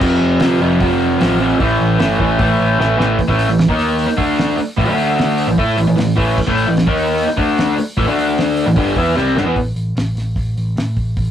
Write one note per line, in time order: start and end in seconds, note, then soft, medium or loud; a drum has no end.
0.00 0.18 F1 loud
0.00 0.40 F2 medium
0.00 0.40 C3 loud
0.00 0.40 F3 loud
0.00 1.60 C4 medium
0.00 kick loud
0.00 crash loud
0.21 0.37 F1 loud
0.40 0.57 D2 loud
0.40 0.60 F2 medium
0.40 0.61 C3 loud
0.40 0.61 F3 medium
0.40 snare loud
0.40 open hi-hat medium
0.60 0.77 F1 loud
0.60 0.80 F2 medium
0.60 0.80 C3 medium
0.60 0.81 F3 medium
0.80 0.97 F1 medium
0.80 1.19 F2 loud
0.80 1.20 C3 loud
0.80 1.20 F3 loud
0.80 kick loud
0.80 open hi-hat medium
1.00 1.16 F1 medium
1.20 1.53 A1 medium
1.20 1.38 F2 medium
1.20 1.39 C3 medium
1.20 1.40 F3 loud
1.20 snare loud
1.20 open hi-hat medium
1.39 1.59 F2 medium
1.39 1.59 C3 medium
1.39 1.60 F3 loud
1.59 1.76 A1 loud
1.59 1.98 A2 loud
1.59 1.99 E3 medium
1.59 1.99 A3 loud
1.59 kick loud
1.59 open hi-hat medium
1.80 1.96 A1 medium
1.99 2.16 G1 loud
1.99 2.18 A2 loud
1.99 2.19 E3 medium
1.99 2.20 A3 loud
1.99 snare loud
1.99 open hi-hat medium
2.19 2.36 A1 medium
2.19 2.38 A2 medium
2.19 2.39 E3 medium
2.19 2.40 A3 medium
2.19 kick medium
2.39 2.56 A1 loud
2.39 2.78 A2 loud
2.39 2.79 E3 loud
2.39 2.79 A3 loud
2.39 kick loud
2.39 open hi-hat medium
2.60 2.76 A1 medium
2.79 2.95 A1 loud
2.79 2.97 A2 medium
2.79 2.97 E3 medium
2.79 2.98 A3 medium
2.79 snare medium
2.98 3.15 A1 medium
2.98 3.17 A2 loud
2.98 3.18 E3 medium
2.98 3.18 A3 loud
2.98 snare medium
3.19 kick loud
3.19 open hi-hat medium
3.28 3.47 A1 medium
3.28 3.48 A2 medium
3.28 3.48 E3 loud
3.28 3.49 A3 medium
3.28 kick medium
3.39 open hi-hat medium
3.48 3.67 A1 medium
3.48 3.65 A2 medium
3.48 3.65 E3 medium
3.58 snare loud
3.58 open hi-hat medium
3.68 4.06 D#2 loud
3.68 4.07 D#3 medium
3.68 4.08 A#3 medium
3.68 4.09 D#4 loud
3.68 kick loud
3.79 open hi-hat medium
3.98 open hi-hat medium
4.08 muted picked electric bass stroke soft
4.08 muted overdriven electric guitar stroke medium
4.17 4.55 D2 medium
4.17 4.57 D3 medium
4.17 4.57 A3 medium
4.17 4.58 D4 loud
4.17 kick loud
4.17 open hi-hat medium
4.38 snare loud
4.38 open hi-hat medium
4.50 snare soft
4.57 muted picked electric bass stroke soft
4.57 muted overdriven electric guitar stroke medium
4.57 open hi-hat medium
4.77 4.86 A1 medium
4.77 4.88 A2 loud
4.77 4.89 E3 loud
4.77 kick loud
4.77 open hi-hat medium
4.86 5.43 D2 loud
4.86 5.47 D3 medium
4.86 5.48 A3 loud
4.86 5.48 D4 medium
4.98 open hi-hat medium
5.19 snare loud
5.19 open hi-hat medium
5.38 open hi-hat medium
5.47 5.57 A1 medium
5.47 5.58 A2 medium
5.47 5.58 E3 medium
5.58 5.76 A2 loud
5.58 5.77 A3 loud
5.58 5.78 E4 loud
5.58 5.78 A4 loud
5.58 kick loud
5.58 open hi-hat medium
5.77 5.87 A1 medium
5.77 5.86 A2 medium
5.77 5.86 E3 medium
5.77 open hi-hat medium
5.87 5.97 A1 medium
5.87 5.95 A2 medium
5.87 5.95 E3 medium
5.96 6.16 A1 medium
5.96 6.13 A2 medium
5.96 6.13 E3 medium
5.96 snare loud
5.96 open hi-hat loud
6.16 6.37 A1 medium
6.16 6.36 A2 medium
6.16 6.37 E3 medium
6.16 6.37 A3 loud
6.16 kick loud
6.16 open hi-hat medium
6.38 kick loud
6.38 crash loud
6.47 6.66 A1 loud
6.47 6.66 A2 loud
6.47 6.66 E3 medium
6.47 6.67 A3 medium
6.47 kick medium
6.58 open hi-hat medium
6.67 6.86 A1 medium
6.67 6.83 A2 medium
6.67 6.83 E3 medium
6.77 snare loud
6.77 open hi-hat medium
6.87 7.24 D#2 loud
6.87 7.26 D#3 medium
6.87 7.27 A#3 medium
6.87 7.27 D#4 medium
6.87 kick loud
6.97 open hi-hat medium
7.18 open hi-hat medium
7.27 muted picked electric bass stroke soft
7.27 muted overdriven electric guitar stroke medium
7.37 7.75 D2 loud
7.37 7.77 D3 loud
7.37 7.77 A3 medium
7.37 7.77 D4 loud
7.37 kick loud
7.37 open hi-hat medium
7.58 snare loud
7.58 open hi-hat medium
7.78 muted overdriven electric guitar stroke medium
7.78 muted picked electric bass stroke soft
7.78 open hi-hat medium
7.97 8.06 A1 medium
7.97 8.07 A2 medium
7.97 8.07 E3 loud
7.97 kick loud
7.97 open hi-hat medium
8.06 8.63 D2 loud
8.06 8.66 D3 medium
8.06 8.66 A3 loud
8.06 8.67 D4 loud
8.19 open hi-hat medium
8.38 snare loud
8.38 open hi-hat medium
8.57 open hi-hat medium
8.66 8.76 A1 medium
8.66 8.77 A2 medium
8.66 8.77 E3 medium
8.76 8.95 G1 loud
8.76 8.96 G2 loud
8.76 8.96 D3 loud
8.76 8.97 G3 loud
8.76 kick loud
8.76 open hi-hat medium
8.96 9.15 E2 loud
8.96 9.15 E3 medium
8.96 9.16 B3 medium
8.96 9.17 E4 loud
8.96 kick loud
8.96 open hi-hat medium
9.15 9.35 C2 loud
9.15 9.36 C3 medium
9.15 9.36 G3 medium
9.15 9.37 C4 medium
9.15 snare medium
9.35 9.44 G1 medium
9.35 9.46 G2 medium
9.35 9.45 D3 loud
9.35 snare loud
9.45 9.55 E2 loud
9.45 9.56 E3 medium
9.45 9.56 B3 medium
9.56 9.74 A1 medium
9.56 kick loud
9.56 open hi-hat medium
9.75 9.95 A1 medium
9.75 open hi-hat medium
9.95 10.14 A1 medium
9.95 snare loud
9.95 open hi-hat medium
10.15 10.35 A1 medium
10.15 snare soft
10.15 open hi-hat medium
10.36 10.55 A1 medium
10.36 kick loud
10.36 open hi-hat medium
10.57 10.76 A1 medium
10.57 open hi-hat medium
10.76 10.96 A2 medium
10.76 snare loud
10.76 open hi-hat medium
10.97 11.16 A1 medium
10.97 kick medium
10.97 open hi-hat medium
11.17 11.31 A1 medium
11.17 kick loud
11.17 open hi-hat medium